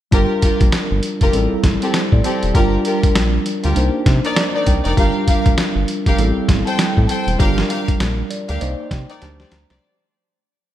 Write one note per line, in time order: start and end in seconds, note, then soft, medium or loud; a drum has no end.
0.11 0.26 G1 loud
0.11 1.31 G3 medium
0.11 1.31 D4 medium
0.11 0.28 F4 medium
0.11 1.32 F4 medium
0.11 0.28 G4 medium
0.11 0.28 A#4 medium
0.11 1.32 A#4 medium
0.11 kick medium
0.11 closed hi-hat medium
0.42 0.58 F4 medium
0.42 0.58 G4 medium
0.42 0.58 A#4 medium
0.42 kick medium
0.42 closed hi-hat medium
0.61 0.70 A#1 medium
0.61 kick loud
0.61 closed hi-hat medium
0.72 snare loud
0.72 closed hi-hat medium
0.91 1.00 G1 medium
1.03 closed hi-hat medium
1.21 1.31 F1 loud
1.21 1.32 F4 medium
1.21 1.32 G4 medium
1.21 1.32 A#4 medium
1.21 kick medium
1.21 closed hi-hat soft
1.33 1.48 A1 medium
1.33 2.52 G3 medium
1.33 2.52 C4 medium
1.33 2.53 E4 medium
1.33 1.64 A4 medium
1.33 closed hi-hat medium
1.52 1.57 A1 soft
1.64 1.78 A1 medium
1.64 kick loud
1.64 snare medium
1.64 closed hi-hat medium
1.82 1.92 C4 medium
1.82 1.92 G4 medium
1.82 1.93 A4 medium
1.82 closed hi-hat medium
1.94 snare loud
1.94 closed hi-hat medium
2.12 2.22 A2 loud
2.12 2.24 D5 medium
2.12 kick medium
2.24 2.40 C4 medium
2.24 2.40 G4 medium
2.24 2.40 A4 medium
2.24 2.42 C5 medium
2.24 closed hi-hat medium
2.43 2.52 E1 medium
2.43 2.72 G4 medium
2.43 closed hi-hat soft
2.54 2.78 G1 loud
2.54 3.73 G3 medium
2.54 3.74 D4 medium
2.54 2.70 F4 medium
2.54 3.74 F4 medium
2.54 2.70 G4 medium
2.54 2.70 A#4 medium
2.54 3.74 A#4 medium
2.54 kick loud
2.54 closed hi-hat medium
2.85 3.01 F4 medium
2.85 3.01 G4 medium
2.85 3.01 A#4 medium
2.85 closed hi-hat medium
3.03 3.08 A#1 soft
3.03 kick loud
3.03 closed hi-hat medium
3.15 3.39 A#1 loud
3.15 snare loud
3.15 closed hi-hat medium
3.46 closed hi-hat medium
3.64 3.74 D2 medium
3.64 3.74 F4 medium
3.64 3.74 G4 medium
3.64 3.74 A#4 medium
3.64 closed hi-hat medium
3.75 3.90 C2 loud
3.75 4.94 A#3 medium
3.75 4.95 D4 medium
3.75 4.95 D#4 medium
3.75 4.96 C5 medium
3.75 closed hi-hat medium
4.06 4.20 C3 loud
4.06 kick loud
4.06 snare medium
4.06 closed hi-hat medium
4.24 4.35 D#4 medium
4.24 4.35 A#4 medium
4.24 4.35 D5 medium
4.24 closed hi-hat medium
4.36 4.65 D5 medium
4.36 snare loud
4.36 closed hi-hat medium
4.55 4.65 D#4 medium
4.55 4.65 A#4 medium
4.55 4.65 D5 medium
4.66 4.81 C2 medium
4.66 4.95 G5 medium
4.66 kick medium
4.66 closed hi-hat medium
4.85 4.94 F1 medium
4.85 4.95 D#4 medium
4.85 4.96 A#4 medium
4.85 4.96 D5 medium
4.85 closed hi-hat medium
4.96 5.11 G1 loud
4.96 6.16 G3 medium
4.96 6.16 D4 medium
4.96 6.17 F4 medium
4.96 5.13 G4 medium
4.96 5.13 A#4 medium
4.96 6.17 A#4 medium
4.96 5.13 F5 medium
4.96 kick medium
4.96 closed hi-hat medium
5.28 5.43 G4 medium
5.28 5.43 A#4 medium
5.28 5.43 F5 medium
5.28 kick medium
5.28 closed hi-hat medium
5.46 5.55 A#1 medium
5.46 kick loud
5.46 closed hi-hat medium
5.58 snare loud
5.58 closed hi-hat medium
5.75 5.85 G1 medium
5.88 closed hi-hat medium
6.06 6.16 F1 medium
6.06 6.17 G4 medium
6.06 6.17 A#4 medium
6.06 6.17 F5 medium
6.06 kick medium
6.06 closed hi-hat soft
6.17 6.32 A1 loud
6.17 7.37 G3 medium
6.17 6.26 B3 medium
6.17 7.37 E4 medium
6.17 7.38 A4 medium
6.17 closed hi-hat medium
6.24 7.40 C4 medium
6.36 6.41 A1 soft
6.49 6.63 A1 loud
6.49 kick loud
6.49 snare medium
6.49 closed hi-hat medium
6.66 6.77 A4 medium
6.66 6.77 C5 medium
6.66 6.77 G5 medium
6.66 closed hi-hat soft
6.79 snare loud
6.79 closed hi-hat medium
6.97 7.07 A2 medium
6.97 kick medium
7.09 7.25 A4 medium
7.09 7.25 C5 medium
7.09 7.25 G5 medium
7.09 closed hi-hat medium
7.27 7.37 E1 medium
7.27 closed hi-hat medium
7.39 7.63 G1 loud
7.39 8.58 G3 medium
7.39 8.58 D4 medium
7.39 8.59 F4 medium
7.39 7.55 G4 medium
7.39 7.55 A#4 medium
7.39 8.59 A#4 medium
7.39 7.55 F5 medium
7.39 kick loud
7.39 closed hi-hat medium
7.58 snare medium
7.70 7.85 G4 medium
7.70 7.85 A#4 medium
7.70 7.86 F5 medium
7.70 closed hi-hat medium
7.88 7.93 A#1 soft
7.88 kick loud
7.88 closed hi-hat medium
8.00 8.23 A#1 medium
8.00 snare loud
8.00 closed hi-hat medium
8.30 8.47 D5 medium
8.30 closed hi-hat medium
8.49 8.58 D2 medium
8.49 8.59 G4 medium
8.49 8.59 A#4 medium
8.49 8.60 F5 medium
8.49 8.59 F5 medium
8.49 closed hi-hat medium
8.60 8.75 C2 loud
8.60 9.21 A#3 medium
8.60 9.22 D#4 medium
8.60 9.21 C5 medium
8.60 9.22 D5 medium
8.60 8.89 D#5 medium
8.60 closed hi-hat medium
8.91 9.05 C3 loud
8.91 9.08 G5 medium
8.91 kick loud
8.91 snare medium
8.91 closed hi-hat medium
9.09 9.20 D#4 medium
9.09 9.20 A#4 medium
9.09 9.20 D5 medium
9.09 9.21 G5 medium
9.09 closed hi-hat medium
9.21 9.45 D2 loud
9.21 9.82 A3 medium
9.21 9.82 D4 medium
9.21 9.83 G4 medium
9.21 9.83 C5 medium
9.21 9.50 A5 medium
9.21 snare medium
9.21 closed hi-hat medium
9.39 9.50 G4 medium
9.39 9.50 C5 medium
9.39 9.50 D5 medium
9.39 snare medium
9.52 9.66 D2 medium
9.52 9.80 A#5 medium
9.52 snare medium
9.52 closed hi-hat medium
9.70 9.80 C2 loud
9.70 9.80 G4 medium
9.70 9.80 C5 medium
9.70 9.81 D5 medium
9.70 snare medium
9.70 closed hi-hat soft